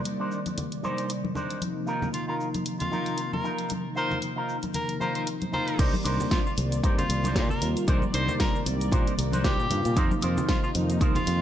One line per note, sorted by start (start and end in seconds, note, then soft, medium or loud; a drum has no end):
0.00 1.59 C3 medium
0.00 1.59 D#3 medium
0.00 1.59 G3 medium
0.00 1.59 A#3 medium
0.00 1.60 D5 medium
0.05 closed hi-hat medium
0.05 shaker soft
0.19 0.38 D4 medium
0.19 0.39 D#4 medium
0.19 0.39 A#4 medium
0.19 0.39 C5 medium
0.31 shaker medium
0.46 closed hi-hat soft
0.46 high conga medium
0.46 shaker soft
0.57 muted clean electric guitar stroke soft
0.57 closed hi-hat medium
0.57 low conga medium
0.57 shaker soft
0.72 closed hi-hat soft
0.83 1.09 D4 loud
0.83 1.10 D#4 medium
0.83 1.10 A#4 medium
0.83 1.10 C5 loud
0.83 high conga medium
0.83 shaker medium
0.98 closed hi-hat soft
0.98 shaker soft
1.09 closed hi-hat medium
1.09 shaker soft
1.24 high conga medium
1.35 1.61 D4 medium
1.35 1.62 D#4 medium
1.35 1.62 A#4 medium
1.35 1.62 C5 medium
1.35 low conga medium
1.35 shaker medium
1.50 closed hi-hat soft
1.50 shaker soft
1.61 5.76 C3 medium
1.61 5.76 D#3 medium
1.61 5.76 F3 medium
1.61 5.77 A#3 medium
1.61 5.77 D#4 medium
1.61 closed hi-hat medium
1.61 high conga medium
1.61 shaker soft
1.87 2.08 D#4 loud
1.87 2.08 F4 medium
1.87 2.09 A#4 loud
1.87 shaker medium
2.02 high conga medium
2.02 low conga medium
2.02 shaker soft
2.14 2.23 F4 medium
2.14 closed hi-hat medium
2.14 shaker soft
2.28 2.47 D#4 medium
2.28 2.36 F4 medium
2.28 2.47 F4 medium
2.28 2.48 A#4 medium
2.40 shaker medium
2.54 closed hi-hat soft
2.54 high conga medium
2.54 shaker soft
2.65 muted clean electric guitar stroke soft
2.65 closed hi-hat medium
2.65 shaker soft
2.80 3.30 F4 medium
2.80 closed hi-hat soft
2.80 low conga medium
2.91 3.18 D#4 medium
2.91 3.18 F4 medium
2.91 3.19 A#4 loud
2.91 high conga medium
2.91 shaker medium
3.06 closed hi-hat soft
3.06 shaker soft
3.18 closed hi-hat medium
3.18 shaker soft
3.33 3.52 A#4 medium
3.33 high conga medium
3.33 low conga medium
3.44 3.70 D#4 medium
3.44 3.71 F4 medium
3.44 3.71 A#4 medium
3.44 shaker medium
3.58 closed hi-hat soft
3.58 shaker soft
3.70 closed hi-hat medium
3.70 high conga medium
3.70 shaker soft
3.96 4.17 D#4 loud
3.96 4.17 F4 medium
3.96 4.17 A#4 loud
3.96 4.17 C5 medium
3.96 shaker medium
4.11 high conga medium
4.11 low conga medium
4.11 shaker soft
4.22 closed hi-hat medium
4.22 shaker soft
4.36 4.56 D#4 medium
4.36 4.56 F4 medium
4.36 4.56 A#4 medium
4.49 shaker medium
4.63 closed hi-hat soft
4.63 high conga medium
4.63 shaker soft
4.74 4.95 A#4 medium
4.74 muted clean electric guitar stroke soft
4.74 closed hi-hat medium
4.74 low conga medium
4.74 shaker soft
4.89 closed hi-hat soft
5.00 5.27 D#4 loud
5.00 5.27 F4 loud
5.00 5.27 A#4 loud
5.00 5.10 C5 medium
5.00 high conga medium
5.00 shaker medium
5.15 5.23 C5 medium
5.15 closed hi-hat soft
5.15 shaker soft
5.27 closed hi-hat medium
5.27 shaker soft
5.42 closed hi-hat soft
5.42 high conga medium
5.52 5.78 D#4 medium
5.52 5.79 F4 medium
5.52 5.79 A#4 medium
5.52 5.79 C5 medium
5.52 low conga medium
5.52 shaker medium
5.68 closed hi-hat soft
5.68 shaker soft
5.78 5.91 C2 loud
5.78 6.54 C3 medium
5.78 6.54 D#3 medium
5.78 6.55 G3 medium
5.78 6.55 A#3 medium
5.78 5.94 D4 loud
5.78 5.94 D#4 medium
5.78 5.94 A#4 medium
5.78 5.94 C5 loud
5.78 6.55 D5 medium
5.78 kick loud
5.78 closed hi-hat medium
5.78 crash loud
5.78 shaker soft
5.78 shaker medium
5.94 high conga medium
5.94 shaker soft
6.04 6.17 C2 medium
6.04 6.46 D4 medium
6.04 6.46 D#4 medium
6.04 6.46 A#4 medium
6.04 6.46 C5 loud
6.04 open hi-hat loud
6.04 shaker loud
6.20 low conga loud
6.20 shaker medium
6.31 6.41 F4 medium
6.31 kick loud
6.31 snare loud
6.31 closed hi-hat medium
6.31 shaker soft
6.31 shaker medium
6.46 6.54 F4 medium
6.46 shaker soft
6.57 6.80 C2 medium
6.57 7.59 C3 medium
6.57 7.59 D#3 medium
6.57 7.59 G3 medium
6.57 7.59 A#3 medium
6.57 7.60 D5 medium
6.57 open hi-hat loud
6.57 high conga medium
6.57 shaker loud
6.72 closed hi-hat medium
6.72 shaker soft
6.72 shaker medium
6.83 6.96 G2 medium
6.83 7.04 D4 medium
6.83 7.04 D#4 medium
6.83 7.04 A#4 medium
6.83 7.04 C5 loud
6.83 kick loud
6.83 closed hi-hat medium
6.83 shaker soft
6.83 shaker medium
6.98 7.48 F4 loud
6.98 closed hi-hat medium
6.98 low conga medium
6.98 shaker soft
7.09 7.37 C2 medium
7.09 open hi-hat loud
7.09 shaker loud
7.24 7.50 D4 medium
7.24 7.50 D#4 medium
7.24 7.51 A#4 medium
7.24 closed hi-hat soft
7.24 high conga medium
7.24 shaker medium
7.25 7.51 C5 loud
7.25 shaker medium
7.35 7.48 A#2 medium
7.35 kick loud
7.35 snare loud
7.35 closed hi-hat medium
7.35 shaker soft
7.35 shaker medium
7.49 7.69 A#4 medium
7.49 low conga medium
7.49 shaker soft
7.61 7.74 D#2 medium
7.61 7.85 C3 medium
7.61 7.85 D#3 medium
7.61 7.85 G3 medium
7.61 7.85 A#3 medium
7.61 7.85 F4 medium
7.61 open hi-hat loud
7.61 shaker loud
7.76 muted clean electric guitar stroke soft
7.76 closed hi-hat soft
7.76 shaker medium
7.87 8.00 C2 loud
7.87 8.63 C3 medium
7.87 8.63 D#3 medium
7.87 8.63 G3 medium
7.87 8.64 A#3 medium
7.87 8.02 D4 loud
7.87 8.03 D#4 loud
7.87 8.03 A#4 loud
7.87 8.03 C5 loud
7.87 8.64 D5 medium
7.87 kick loud
7.87 closed hi-hat medium
7.87 shaker soft
7.87 shaker medium
8.02 high conga medium
8.02 shaker soft
8.13 8.26 C2 medium
8.13 8.54 D4 medium
8.13 8.55 D#4 medium
8.13 8.55 A#4 medium
8.13 8.35 C5 medium
8.13 8.55 C5 loud
8.13 open hi-hat loud
8.13 shaker medium
8.28 low conga medium
8.28 shaker medium
8.40 8.60 A#4 medium
8.40 kick loud
8.40 snare loud
8.40 closed hi-hat medium
8.40 shaker soft
8.40 shaker medium
8.55 shaker soft
8.65 8.88 C2 medium
8.65 9.67 C3 medium
8.65 9.67 D#3 medium
8.65 9.68 G3 medium
8.65 9.68 A#3 medium
8.65 9.68 D5 loud
8.65 open hi-hat loud
8.65 high conga medium
8.65 shaker medium
8.80 closed hi-hat medium
8.80 shaker soft
8.80 shaker medium
8.91 9.04 A#2 loud
8.91 9.12 D4 medium
8.91 9.12 D#4 medium
8.91 9.13 A#4 medium
8.91 kick loud
8.91 closed hi-hat medium
8.91 low conga medium
8.91 shaker soft
8.93 9.13 C5 loud
8.93 shaker medium
9.07 closed hi-hat medium
9.07 shaker soft
9.18 9.55 C2 loud
9.18 open hi-hat loud
9.18 shaker loud
9.32 9.58 D4 medium
9.32 9.59 D#4 medium
9.32 9.59 A#4 medium
9.32 9.59 C5 loud
9.32 closed hi-hat soft
9.32 high conga medium
9.32 shaker medium
9.44 10.03 G4 loud
9.44 kick loud
9.44 snare loud
9.44 closed hi-hat medium
9.44 shaker soft
9.44 shaker medium
9.59 9.69 A#2 medium
9.59 shaker soft
9.70 9.83 G2 medium
9.70 9.94 C3 medium
9.70 9.94 D#3 medium
9.70 9.94 G3 medium
9.70 9.94 A#3 medium
9.70 9.94 F4 medium
9.70 open hi-hat loud
9.70 low conga medium
9.70 shaker medium
9.84 9.95 A#2 medium
9.84 muted clean electric guitar stroke soft
9.84 closed hi-hat soft
9.84 shaker medium
9.96 10.09 F2 loud
9.96 10.72 C3 medium
9.96 10.72 D#3 medium
9.96 10.72 F3 medium
9.96 10.72 A#3 medium
9.96 10.11 D#4 loud
9.96 10.73 D#4 medium
9.96 10.11 F4 loud
9.96 10.12 A#4 loud
9.96 10.12 C5 loud
9.96 kick loud
9.96 closed hi-hat medium
9.96 shaker soft
9.96 shaker medium
10.11 high conga medium
10.11 shaker soft
10.22 10.35 F2 medium
10.22 10.63 D#4 medium
10.22 10.63 F4 medium
10.22 10.64 A#4 medium
10.22 10.64 C5 loud
10.22 open hi-hat loud
10.22 shaker medium
10.38 low conga loud
10.38 shaker medium
10.49 10.58 F4 medium
10.49 kick loud
10.49 snare loud
10.49 closed hi-hat medium
10.49 shaker medium
10.49 shaker soft
10.63 10.71 F4 medium
10.63 shaker soft
10.75 10.97 F2 medium
10.75 11.42 C3 medium
10.75 11.42 D#3 medium
10.75 11.42 F3 medium
10.75 11.42 A#3 medium
10.75 11.42 D#4 medium
10.75 open hi-hat loud
10.75 high conga medium
10.75 shaker medium
10.90 closed hi-hat soft
10.90 shaker soft
10.90 shaker medium
11.00 11.13 C2 medium
11.00 11.21 D#4 medium
11.00 11.21 F4 medium
11.00 11.21 A#4 medium
11.00 11.22 C5 loud
11.00 kick loud
11.00 closed hi-hat medium
11.00 shaker soft
11.00 shaker medium
11.15 11.42 F4 loud
11.15 closed hi-hat soft
11.15 low conga loud
11.15 shaker soft
11.27 11.42 F2 loud
11.27 open hi-hat loud
11.27 shaker medium